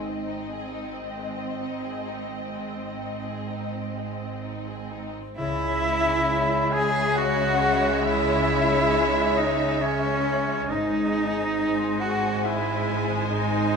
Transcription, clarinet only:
5.40 E4
6.73 G#4
7.18 F#4
8.05 E4
9.39 D#4
9.85 C#4
10.72 D#4
12.02 F#4
12.44 E4
13.31 D#4

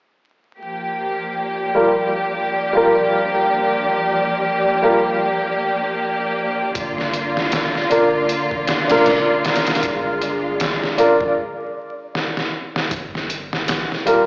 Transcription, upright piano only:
1.75 G3 F4 A#4
2.73 G3 F4 A#4
4.82 G3 F4 A#4
7.90 D4 F4 A#4
8.88 D4 F4 A#4
10.98 D4 F4 A#4
14.06 G3 F4 A#4

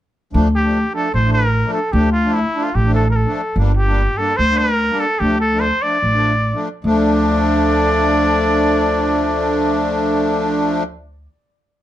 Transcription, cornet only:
0.55 G4
0.95 A4
1.14 C5
1.33 A#4
1.73 A4
1.92 G4
2.12 F4
2.34 E4
2.64 F4
2.75 G4
2.94 A4
3.10 A#4
3.16 A4
3.76 G4
4.17 A4
4.37 C5
4.57 A#4
5.00 A4
5.19 G4
5.40 A4
5.60 C5
5.82 D5
6.85 D5

